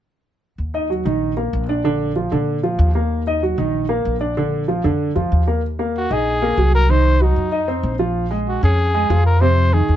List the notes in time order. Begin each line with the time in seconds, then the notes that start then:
0.58 D#2
0.74 D#4 D#5
0.90 F#3 F#4
1.05 A#1 D#3 D#4
1.37 A#3 A#4
1.53 A#1
1.69 D4 D5
1.84 D3 D4
2.16 F3 F4
2.32 A#2 D3 D4
2.63 F3 F4
2.79 D#2
2.95 A#3 A#4
3.27 D#4 D#5
3.42 F#3 F#4
3.58 A#1 D#3 D#4
3.89 A#3 A#4
4.05 A#1
4.21 D4 D5
4.37 D3 D4
4.68 F3 F4
4.84 F2 D3 D4
5.16 F2 F3 F4
5.32 D#2
5.47 A#3 A#4
5.79 A#3 A#4
5.97 F#4
6.10 A#1 D#4 G#4 D#5
6.42 A#3 A#4
6.58 C2 F#3 F#4
6.75 A#4
6.89 D#3 D#4 C5
7.21 F#3 D#4 F#4
7.36 F2
7.52 D#4 D#5
7.68 C4 C5
7.83 A#1
7.99 F3 F4
8.31 G#3 G#4
8.48 F#4
8.63 F2 C#4 G#4 C#5
8.94 G#3 G#4
9.10 F2 F3 F4
9.26 A#4
9.41 C3 C4 C5
9.73 D#3 D#4 G#4
9.89 E2